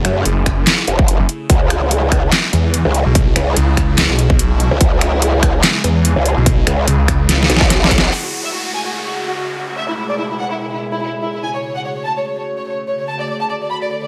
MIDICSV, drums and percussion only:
0, 0, Header, 1, 2, 480
1, 0, Start_track
1, 0, Key_signature, 3, "minor"
1, 0, Tempo, 413793
1, 1735, Time_signature, 4, 2, 24, 8
1, 16326, End_track
2, 0, Start_track
2, 0, Title_t, "Drums"
2, 56, Note_on_c, 9, 26, 79
2, 56, Note_on_c, 9, 42, 50
2, 172, Note_off_c, 9, 26, 0
2, 172, Note_off_c, 9, 42, 0
2, 296, Note_on_c, 9, 42, 76
2, 412, Note_off_c, 9, 42, 0
2, 536, Note_on_c, 9, 26, 59
2, 536, Note_on_c, 9, 36, 66
2, 536, Note_on_c, 9, 42, 49
2, 652, Note_off_c, 9, 26, 0
2, 652, Note_off_c, 9, 36, 0
2, 652, Note_off_c, 9, 42, 0
2, 776, Note_on_c, 9, 38, 124
2, 776, Note_on_c, 9, 39, 87
2, 776, Note_on_c, 9, 42, 75
2, 892, Note_off_c, 9, 38, 0
2, 892, Note_off_c, 9, 39, 0
2, 892, Note_off_c, 9, 42, 0
2, 1015, Note_on_c, 9, 42, 51
2, 1131, Note_off_c, 9, 42, 0
2, 1147, Note_on_c, 9, 36, 111
2, 1255, Note_on_c, 9, 42, 76
2, 1263, Note_off_c, 9, 36, 0
2, 1371, Note_off_c, 9, 42, 0
2, 1495, Note_on_c, 9, 42, 50
2, 1611, Note_off_c, 9, 42, 0
2, 1736, Note_on_c, 9, 36, 119
2, 1736, Note_on_c, 9, 42, 77
2, 1852, Note_off_c, 9, 36, 0
2, 1852, Note_off_c, 9, 42, 0
2, 1976, Note_on_c, 9, 26, 82
2, 1976, Note_on_c, 9, 42, 53
2, 2092, Note_off_c, 9, 26, 0
2, 2092, Note_off_c, 9, 42, 0
2, 2216, Note_on_c, 9, 42, 78
2, 2332, Note_off_c, 9, 42, 0
2, 2456, Note_on_c, 9, 26, 61
2, 2456, Note_on_c, 9, 36, 61
2, 2456, Note_on_c, 9, 42, 52
2, 2572, Note_off_c, 9, 26, 0
2, 2572, Note_off_c, 9, 36, 0
2, 2572, Note_off_c, 9, 42, 0
2, 2696, Note_on_c, 9, 38, 120
2, 2696, Note_on_c, 9, 39, 86
2, 2696, Note_on_c, 9, 42, 76
2, 2812, Note_off_c, 9, 38, 0
2, 2812, Note_off_c, 9, 39, 0
2, 2812, Note_off_c, 9, 42, 0
2, 2935, Note_on_c, 9, 42, 51
2, 3051, Note_off_c, 9, 42, 0
2, 3176, Note_on_c, 9, 42, 75
2, 3292, Note_off_c, 9, 42, 0
2, 3416, Note_on_c, 9, 42, 50
2, 3532, Note_off_c, 9, 42, 0
2, 3656, Note_on_c, 9, 36, 116
2, 3656, Note_on_c, 9, 42, 81
2, 3772, Note_off_c, 9, 36, 0
2, 3772, Note_off_c, 9, 42, 0
2, 3896, Note_on_c, 9, 26, 86
2, 3896, Note_on_c, 9, 42, 53
2, 4012, Note_off_c, 9, 26, 0
2, 4012, Note_off_c, 9, 42, 0
2, 4135, Note_on_c, 9, 42, 79
2, 4251, Note_off_c, 9, 42, 0
2, 4376, Note_on_c, 9, 26, 64
2, 4376, Note_on_c, 9, 36, 63
2, 4376, Note_on_c, 9, 42, 52
2, 4492, Note_off_c, 9, 26, 0
2, 4492, Note_off_c, 9, 36, 0
2, 4492, Note_off_c, 9, 42, 0
2, 4616, Note_on_c, 9, 38, 117
2, 4616, Note_on_c, 9, 39, 84
2, 4616, Note_on_c, 9, 42, 78
2, 4732, Note_off_c, 9, 38, 0
2, 4732, Note_off_c, 9, 39, 0
2, 4732, Note_off_c, 9, 42, 0
2, 4856, Note_on_c, 9, 42, 52
2, 4972, Note_off_c, 9, 42, 0
2, 4987, Note_on_c, 9, 36, 101
2, 5096, Note_on_c, 9, 42, 77
2, 5103, Note_off_c, 9, 36, 0
2, 5212, Note_off_c, 9, 42, 0
2, 5336, Note_on_c, 9, 42, 52
2, 5452, Note_off_c, 9, 42, 0
2, 5575, Note_on_c, 9, 42, 82
2, 5576, Note_on_c, 9, 36, 116
2, 5691, Note_off_c, 9, 42, 0
2, 5692, Note_off_c, 9, 36, 0
2, 5816, Note_on_c, 9, 26, 83
2, 5816, Note_on_c, 9, 42, 56
2, 5932, Note_off_c, 9, 26, 0
2, 5932, Note_off_c, 9, 42, 0
2, 6056, Note_on_c, 9, 42, 82
2, 6172, Note_off_c, 9, 42, 0
2, 6296, Note_on_c, 9, 26, 65
2, 6296, Note_on_c, 9, 36, 61
2, 6296, Note_on_c, 9, 42, 54
2, 6412, Note_off_c, 9, 26, 0
2, 6412, Note_off_c, 9, 36, 0
2, 6412, Note_off_c, 9, 42, 0
2, 6536, Note_on_c, 9, 38, 115
2, 6536, Note_on_c, 9, 39, 88
2, 6536, Note_on_c, 9, 42, 80
2, 6652, Note_off_c, 9, 38, 0
2, 6652, Note_off_c, 9, 39, 0
2, 6652, Note_off_c, 9, 42, 0
2, 6776, Note_on_c, 9, 42, 54
2, 6892, Note_off_c, 9, 42, 0
2, 7016, Note_on_c, 9, 42, 83
2, 7132, Note_off_c, 9, 42, 0
2, 7256, Note_on_c, 9, 42, 53
2, 7372, Note_off_c, 9, 42, 0
2, 7496, Note_on_c, 9, 36, 115
2, 7496, Note_on_c, 9, 42, 83
2, 7612, Note_off_c, 9, 36, 0
2, 7612, Note_off_c, 9, 42, 0
2, 7736, Note_on_c, 9, 26, 83
2, 7736, Note_on_c, 9, 42, 56
2, 7852, Note_off_c, 9, 26, 0
2, 7852, Note_off_c, 9, 42, 0
2, 7976, Note_on_c, 9, 42, 84
2, 8092, Note_off_c, 9, 42, 0
2, 8216, Note_on_c, 9, 26, 62
2, 8216, Note_on_c, 9, 36, 62
2, 8216, Note_on_c, 9, 42, 55
2, 8332, Note_off_c, 9, 26, 0
2, 8332, Note_off_c, 9, 36, 0
2, 8332, Note_off_c, 9, 42, 0
2, 8456, Note_on_c, 9, 38, 67
2, 8456, Note_on_c, 9, 42, 82
2, 8572, Note_off_c, 9, 38, 0
2, 8572, Note_off_c, 9, 42, 0
2, 8616, Note_on_c, 9, 38, 76
2, 8696, Note_on_c, 9, 42, 55
2, 8732, Note_off_c, 9, 38, 0
2, 8776, Note_on_c, 9, 38, 84
2, 8812, Note_off_c, 9, 42, 0
2, 8827, Note_on_c, 9, 36, 105
2, 8892, Note_off_c, 9, 38, 0
2, 8936, Note_on_c, 9, 38, 87
2, 8936, Note_on_c, 9, 42, 82
2, 8943, Note_off_c, 9, 36, 0
2, 9052, Note_off_c, 9, 38, 0
2, 9052, Note_off_c, 9, 42, 0
2, 9096, Note_on_c, 9, 38, 99
2, 9176, Note_on_c, 9, 36, 62
2, 9176, Note_on_c, 9, 42, 53
2, 9212, Note_off_c, 9, 38, 0
2, 9256, Note_on_c, 9, 38, 105
2, 9292, Note_off_c, 9, 36, 0
2, 9292, Note_off_c, 9, 42, 0
2, 9372, Note_off_c, 9, 38, 0
2, 16326, End_track
0, 0, End_of_file